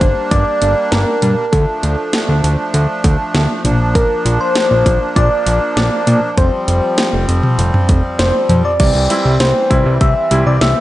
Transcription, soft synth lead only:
0.00 0.31 C5 loud
0.31 0.88 D5 loud
0.91 1.54 A#4 medium
1.52 2.43 A4 medium
3.95 4.42 A#4 medium
4.41 5.18 C5 loud
5.16 5.76 D5 loud
5.77 6.39 D5 loud
6.38 7.29 C5 medium
8.19 8.66 C5 medium
8.65 8.79 D5 medium
8.80 9.42 D5 medium
9.40 10.03 C5 loud
10.01 10.48 E5 loud
10.47 10.63 D5 medium
10.62 10.80 E5 loud

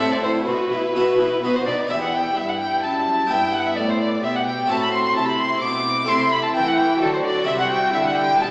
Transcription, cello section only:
0.22 0.30 A2 soft
0.46 0.54 B2 soft
0.70 0.78 B2 soft
0.95 1.03 B2 medium
1.18 1.26 B2 soft
1.42 1.50 B2 soft
1.66 1.74 B2 soft
1.90 2.34 E2 soft
2.37 2.83 G2 soft
2.84 3.29 F#2 soft
3.30 3.76 G2 soft
3.77 4.23 A2 soft
4.23 4.69 B2 soft
4.69 5.15 A2 soft
5.16 5.62 C3 soft
5.63 6.08 B2 soft
6.09 6.54 C3 medium
6.55 7.00 E3 medium
7.01 7.47 D3 soft
7.47 7.92 C3 medium
7.93 8.39 D3 medium
8.40 8.51 B2 medium

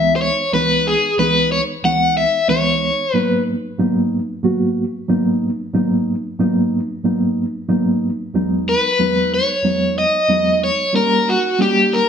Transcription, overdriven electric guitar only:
0.00 0.15 E5 medium
0.16 0.21 C5 medium
0.22 0.54 C#5 medium
0.54 0.87 B4 medium
0.87 1.17 G#4 medium
1.19 1.52 B4 medium
1.52 1.61 C#5 medium
1.85 2.14 F#5 medium
2.17 2.49 E5 medium
2.50 3.16 C#5 medium
3.16 3.43 B4 medium
8.69 9.34 B4 medium
9.34 9.98 C#5 medium
9.98 10.64 D#5 loud
10.64 10.96 C#5 medium
10.96 11.28 A#4 medium
11.29 11.61 F#4 medium
11.62 11.94 G4 medium
11.93 12.09 A#4 medium

